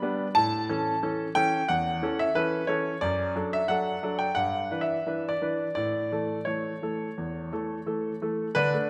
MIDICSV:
0, 0, Header, 1, 2, 480
1, 0, Start_track
1, 0, Tempo, 668896
1, 254, Time_signature, 4, 2, 24, 8
1, 3134, Tempo, 696864
1, 6255, End_track
2, 0, Start_track
2, 0, Title_t, "Grand piano"
2, 0, Program_c, 0, 0
2, 0, Note_on_c, 0, 83, 106
2, 15, Note_on_c, 0, 55, 47
2, 19, Note_on_c, 0, 59, 48
2, 22, Note_on_c, 0, 62, 55
2, 187, Note_off_c, 0, 55, 0
2, 190, Note_off_c, 0, 59, 0
2, 192, Note_off_c, 0, 62, 0
2, 221, Note_off_c, 0, 83, 0
2, 250, Note_on_c, 0, 81, 102
2, 259, Note_on_c, 0, 45, 64
2, 490, Note_off_c, 0, 45, 0
2, 498, Note_on_c, 0, 52, 47
2, 499, Note_on_c, 0, 61, 47
2, 499, Note_on_c, 0, 69, 51
2, 669, Note_off_c, 0, 52, 0
2, 670, Note_off_c, 0, 61, 0
2, 670, Note_off_c, 0, 69, 0
2, 737, Note_on_c, 0, 52, 45
2, 738, Note_on_c, 0, 69, 52
2, 739, Note_on_c, 0, 61, 43
2, 908, Note_off_c, 0, 52, 0
2, 909, Note_off_c, 0, 69, 0
2, 910, Note_off_c, 0, 61, 0
2, 943, Note_off_c, 0, 81, 0
2, 969, Note_on_c, 0, 79, 99
2, 973, Note_on_c, 0, 52, 46
2, 976, Note_on_c, 0, 61, 47
2, 980, Note_on_c, 0, 69, 56
2, 1147, Note_off_c, 0, 52, 0
2, 1148, Note_off_c, 0, 61, 0
2, 1151, Note_off_c, 0, 69, 0
2, 1209, Note_on_c, 0, 78, 90
2, 1212, Note_off_c, 0, 79, 0
2, 1215, Note_on_c, 0, 40, 56
2, 1447, Note_off_c, 0, 40, 0
2, 1451, Note_on_c, 0, 52, 50
2, 1457, Note_on_c, 0, 61, 49
2, 1461, Note_on_c, 0, 69, 54
2, 1570, Note_off_c, 0, 78, 0
2, 1575, Note_on_c, 0, 76, 86
2, 1623, Note_off_c, 0, 52, 0
2, 1627, Note_off_c, 0, 61, 0
2, 1629, Note_off_c, 0, 69, 0
2, 1689, Note_on_c, 0, 71, 88
2, 1692, Note_off_c, 0, 76, 0
2, 1696, Note_on_c, 0, 52, 47
2, 1697, Note_on_c, 0, 61, 45
2, 1702, Note_on_c, 0, 69, 49
2, 1866, Note_off_c, 0, 52, 0
2, 1867, Note_off_c, 0, 61, 0
2, 1870, Note_off_c, 0, 69, 0
2, 1918, Note_on_c, 0, 73, 70
2, 1927, Note_on_c, 0, 52, 45
2, 1929, Note_off_c, 0, 71, 0
2, 1929, Note_on_c, 0, 61, 45
2, 1931, Note_on_c, 0, 69, 49
2, 2101, Note_off_c, 0, 52, 0
2, 2103, Note_off_c, 0, 61, 0
2, 2104, Note_off_c, 0, 69, 0
2, 2140, Note_off_c, 0, 73, 0
2, 2161, Note_on_c, 0, 74, 87
2, 2167, Note_on_c, 0, 42, 61
2, 2381, Note_off_c, 0, 74, 0
2, 2403, Note_off_c, 0, 42, 0
2, 2407, Note_on_c, 0, 54, 43
2, 2411, Note_on_c, 0, 62, 43
2, 2415, Note_on_c, 0, 69, 48
2, 2534, Note_on_c, 0, 76, 85
2, 2582, Note_off_c, 0, 54, 0
2, 2585, Note_off_c, 0, 62, 0
2, 2588, Note_off_c, 0, 69, 0
2, 2642, Note_on_c, 0, 78, 82
2, 2647, Note_on_c, 0, 54, 41
2, 2653, Note_on_c, 0, 62, 40
2, 2654, Note_off_c, 0, 76, 0
2, 2657, Note_on_c, 0, 69, 45
2, 2822, Note_off_c, 0, 54, 0
2, 2826, Note_off_c, 0, 62, 0
2, 2829, Note_off_c, 0, 69, 0
2, 2891, Note_on_c, 0, 54, 42
2, 2895, Note_on_c, 0, 62, 45
2, 2896, Note_on_c, 0, 69, 47
2, 2980, Note_off_c, 0, 78, 0
2, 3004, Note_on_c, 0, 79, 77
2, 3065, Note_off_c, 0, 54, 0
2, 3068, Note_off_c, 0, 62, 0
2, 3069, Note_off_c, 0, 69, 0
2, 3120, Note_on_c, 0, 78, 86
2, 3129, Note_on_c, 0, 43, 54
2, 3130, Note_off_c, 0, 79, 0
2, 3359, Note_off_c, 0, 43, 0
2, 3371, Note_on_c, 0, 62, 41
2, 3372, Note_on_c, 0, 52, 40
2, 3376, Note_on_c, 0, 71, 44
2, 3440, Note_off_c, 0, 78, 0
2, 3440, Note_on_c, 0, 76, 75
2, 3541, Note_off_c, 0, 62, 0
2, 3542, Note_off_c, 0, 52, 0
2, 3544, Note_off_c, 0, 71, 0
2, 3614, Note_on_c, 0, 52, 41
2, 3617, Note_on_c, 0, 62, 36
2, 3621, Note_on_c, 0, 71, 41
2, 3762, Note_off_c, 0, 76, 0
2, 3767, Note_on_c, 0, 74, 72
2, 3784, Note_off_c, 0, 52, 0
2, 3785, Note_off_c, 0, 62, 0
2, 3789, Note_off_c, 0, 71, 0
2, 3856, Note_on_c, 0, 52, 40
2, 3858, Note_on_c, 0, 62, 38
2, 3861, Note_on_c, 0, 71, 41
2, 4026, Note_off_c, 0, 52, 0
2, 4028, Note_off_c, 0, 62, 0
2, 4030, Note_off_c, 0, 71, 0
2, 4076, Note_off_c, 0, 74, 0
2, 4087, Note_on_c, 0, 74, 79
2, 4096, Note_on_c, 0, 45, 53
2, 4327, Note_off_c, 0, 45, 0
2, 4341, Note_on_c, 0, 52, 38
2, 4342, Note_on_c, 0, 57, 36
2, 4345, Note_on_c, 0, 69, 39
2, 4512, Note_off_c, 0, 52, 0
2, 4513, Note_off_c, 0, 57, 0
2, 4515, Note_off_c, 0, 69, 0
2, 4568, Note_on_c, 0, 73, 60
2, 4572, Note_off_c, 0, 74, 0
2, 4579, Note_on_c, 0, 52, 36
2, 4581, Note_on_c, 0, 57, 37
2, 4583, Note_on_c, 0, 69, 39
2, 4751, Note_off_c, 0, 52, 0
2, 4752, Note_off_c, 0, 57, 0
2, 4754, Note_off_c, 0, 69, 0
2, 4823, Note_on_c, 0, 52, 37
2, 4830, Note_on_c, 0, 57, 36
2, 4831, Note_on_c, 0, 69, 39
2, 4994, Note_off_c, 0, 52, 0
2, 4998, Note_off_c, 0, 57, 0
2, 4999, Note_off_c, 0, 69, 0
2, 5069, Note_on_c, 0, 40, 41
2, 5296, Note_off_c, 0, 40, 0
2, 5309, Note_on_c, 0, 52, 39
2, 5309, Note_on_c, 0, 57, 39
2, 5313, Note_on_c, 0, 69, 44
2, 5477, Note_off_c, 0, 52, 0
2, 5478, Note_off_c, 0, 57, 0
2, 5480, Note_off_c, 0, 69, 0
2, 5541, Note_on_c, 0, 52, 38
2, 5543, Note_on_c, 0, 57, 35
2, 5546, Note_on_c, 0, 69, 41
2, 5714, Note_off_c, 0, 52, 0
2, 5715, Note_off_c, 0, 57, 0
2, 5717, Note_off_c, 0, 69, 0
2, 5749, Note_off_c, 0, 73, 0
2, 5785, Note_on_c, 0, 52, 36
2, 5788, Note_on_c, 0, 57, 39
2, 5792, Note_on_c, 0, 69, 40
2, 5956, Note_off_c, 0, 52, 0
2, 5958, Note_off_c, 0, 57, 0
2, 5960, Note_off_c, 0, 69, 0
2, 6014, Note_on_c, 0, 71, 100
2, 6021, Note_on_c, 0, 50, 62
2, 6024, Note_on_c, 0, 62, 74
2, 6135, Note_off_c, 0, 50, 0
2, 6143, Note_on_c, 0, 57, 48
2, 6157, Note_off_c, 0, 71, 0
2, 6242, Note_off_c, 0, 62, 0
2, 6255, Note_off_c, 0, 57, 0
2, 6255, End_track
0, 0, End_of_file